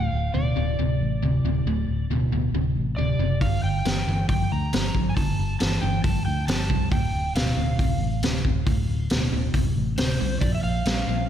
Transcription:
Already playing: fingered electric bass D1, overdriven electric guitar D2 A2, electric slide guitar F5
0.13 fingered electric bass D1
0.34 fingered electric bass D1, overdriven electric guitar D2 B2, electric slide guitar D5
0.56 fingered electric bass D1, overdriven electric guitar D2 B2
0.79 fingered electric bass D1, overdriven electric guitar D2 C3
1.01 fingered electric bass A1
1.23 fingered electric bass D1, overdriven electric guitar D2 C3
1.44 fingered electric bass D1, overdriven electric guitar D2 C3
1.66 fingered electric bass D1, overdriven electric guitar D2 A2
1.88 fingered electric bass D1
2.10 fingered electric bass D1, overdriven electric guitar D2 B2
2.32 fingered electric bass D1, overdriven electric guitar D2 B2
2.53 fingered electric bass D1, overdriven electric guitar D2 C3
2.76 fingered electric bass A1
2.97 fingered electric bass D1, overdriven electric guitar D2 C3, electric slide guitar D5
3.19 fingered electric bass F#1, overdriven electric guitar D2 C3
3.41 fingered electric bass G1, overdriven electric guitar G2 D3, electric slide guitar F5, kick, open hi-hat
3.64 fingered electric bass G1, electric slide guitar G5
3.85 fingered electric bass G1, overdriven electric guitar G2 E3, snare, open hi-hat
4.07 fingered electric bass G1, overdriven electric guitar G2 E3
4.29 fingered electric bass G1, overdriven electric guitar G2 F3, electric slide guitar G5, kick, open hi-hat
4.52 fingered electric bass D2, electric slide guitar A#5
4.73 fingered electric bass G1, overdriven electric guitar G2 F3, snare, open hi-hat
4.95 fingered electric bass G1, overdriven electric guitar G2 F3, kick
5.09 electric slide guitar G#5
5.17 fingered electric bass G1, overdriven electric guitar G2 D3, electric slide guitar A5, kick, open hi-hat
5.39 fingered electric bass G1
5.59 fingered electric bass G1, overdriven electric guitar G2 E3, electric slide guitar A5, snare, open hi-hat
5.81 fingered electric bass G1, overdriven electric guitar G2 E3, electric slide guitar G5
6.04 fingered electric bass G1, overdriven electric guitar G2 F3, electric slide guitar A5, kick, open hi-hat
6.25 fingered electric bass D2, electric slide guitar G5
6.48 fingered electric bass G1, overdriven electric guitar G2 F3, electric slide guitar A5, snare, open hi-hat
6.70 fingered electric bass C2, overdriven electric guitar G2 F3, kick
6.92 fingered electric bass D1, overdriven electric guitar D2 A2, electric slide guitar G5, kick, open hi-hat
7.13 fingered electric bass D1
7.35 fingered electric bass D1, overdriven electric guitar D2 B2, electric slide guitar F5, snare, open hi-hat
7.57 fingered electric bass D1, overdriven electric guitar D2 B2
7.79 fingered electric bass D1, overdriven electric guitar D2 C3, kick, open hi-hat
8.00 fingered electric bass A1
8.22 fingered electric bass D1, overdriven electric guitar D2 C3, snare, open hi-hat
8.45 fingered electric bass D1, overdriven electric guitar D2 C3, kick
8.66 fingered electric bass D1, overdriven electric guitar D2 A2, kick, open hi-hat
8.89 fingered electric bass D1
9.10 fingered electric bass D1, overdriven electric guitar D2 B2, snare, open hi-hat
9.33 fingered electric bass D1, overdriven electric guitar D2 B2
9.54 fingered electric bass D1, overdriven electric guitar D2 C3, kick, open hi-hat
9.76 fingered electric bass A1
9.97 fingered electric bass D1, overdriven electric guitar D2 C3, electric slide guitar C5, snare, open hi-hat
10.20 fingered electric bass C2, overdriven electric guitar D2 C3
10.41 fingered electric bass A#1, overdriven electric guitar A#2 F3, electric slide guitar D5, kick, open hi-hat
10.55 electric slide guitar E5
10.63 fingered electric bass A#1, electric slide guitar F5
10.85 fingered electric bass A#1, overdriven electric guitar A#2 G3, snare, open hi-hat
11.07 fingered electric bass A#1, overdriven electric guitar A#2 G3

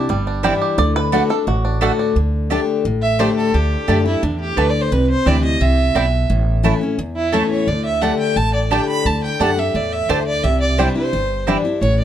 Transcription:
Already playing: five-string banjo D4 G4
0.09 upright bass G1, steel-string acoustic guitar G2, five-string banjo G3
0.27 five-string banjo D4
0.43 steel-string acoustic guitar E3 G3 D4 E4, five-string banjo G3, mandolin C4 E4 D5 G5
0.62 five-string banjo G4
0.78 upright bass D2, steel-string acoustic guitar D3, five-string banjo D5
0.96 five-string banjo B4
1.12 steel-string acoustic guitar D3 A3 D4 F#4, mandolin A3 F#4 D5 F#5, five-string banjo D4
1.29 steel-string acoustic guitar D4 F#4, five-string banjo A4
1.47 upright bass A1, steel-string acoustic guitar A2, five-string banjo F#4
1.65 five-string banjo D4
1.81 steel-string acoustic guitar D3 A3 D4 F#4, mandolin A3 F#4 D5 F#5, five-string banjo A4
1.99 five-string banjo D4
2.16 upright bass D2, steel-string acoustic guitar D3
2.50 steel-string acoustic guitar D3 A3 D4 G4, mandolin A3 G4 D5 A5
2.85 upright bass A1, steel-string acoustic guitar A2
3.02 fiddle E5
3.19 steel-string acoustic guitar D3 A3 D4 G4, mandolin A3 G4 D5 A5, fiddle C5
3.37 fiddle A4
3.54 upright bass D2, fiddle G4
3.88 upright bass F#2, steel-string acoustic guitar D3 A3 D4 G4, mandolin A3 G4 D5 A5
4.05 steel-string acoustic guitar D4 G4, fiddle E4
4.23 upright bass E2, steel-string acoustic guitar A2, fiddle D4
4.40 fiddle G4
4.57 upright bass D2, steel-string acoustic guitar D3, mandolin A3 G4 D5 A5, fiddle B4
4.69 fiddle D5
4.81 fiddle C5
4.92 upright bass C2, steel-string acoustic guitar C3, fiddle B4
5.10 fiddle C5
5.26 upright bass D2, steel-string acoustic guitar E3 G3 D4 E4, mandolin C4 E4 D5 G5, fiddle D5
5.43 steel-string acoustic guitar D4 E4, fiddle D#5
5.60 upright bass C2, steel-string acoustic guitar C3, fiddle E5
5.95 upright bass B1, steel-string acoustic guitar B2, mandolin C4 E4 D5 G5
6.30 upright bass A1, steel-string acoustic guitar A2
6.63 steel-string acoustic guitar E3 A3 C#4 E4, mandolin A3 E4 C#5 A5
6.81 steel-string acoustic guitar C#4 E4
6.98 upright bass E2, steel-string acoustic guitar E2
7.16 fiddle E4
7.32 steel-string acoustic guitar E3 A3 C#4 E4, mandolin A3 E4 C#5 A5, fiddle A4
7.51 fiddle C#5
7.67 upright bass D2, steel-string acoustic guitar D3, fiddle D5
7.85 fiddle E5
8.01 steel-string acoustic guitar D3 A3 D4 G4, mandolin A3 G4 D5 A5, fiddle F#5
8.19 fiddle G5
8.36 upright bass A1, steel-string acoustic guitar A2, fiddle A5
8.54 fiddle D5
8.71 steel-string acoustic guitar D3 A3 D4 G4, mandolin A3 G4 D5 A5, fiddle G5
8.88 fiddle B5
9.05 upright bass D2, steel-string acoustic guitar D3, fiddle A5
9.24 fiddle G5
9.40 upright bass F#2, steel-string acoustic guitar D3 A3 D4 G4, mandolin A3 G4 D5 A5, fiddle F#5
9.57 steel-string acoustic guitar D4 G4, fiddle E5
9.74 upright bass E2, steel-string acoustic guitar A2, fiddle D5
9.93 fiddle E5
10.09 upright bass D2, steel-string acoustic guitar D3, mandolin A3 G4 D5 A5, fiddle C5
10.27 fiddle D5
10.43 upright bass C2, steel-string acoustic guitar C3, fiddle E5
10.61 fiddle D5
10.78 steel-string acoustic guitar E3 G3 D4 E4, mandolin C4 E4 D5 G5, fiddle C5
10.95 steel-string acoustic guitar D4 E4, fiddle C5
11.13 upright bass G1, steel-string acoustic guitar G2
11.47 steel-string acoustic guitar E3 G3 D4 E4, mandolin C4 E4 D5 G5
11.65 steel-string acoustic guitar D4 E4
11.81 upright bass A1, steel-string acoustic guitar A2, fiddle C#5
12.00 fiddle D5

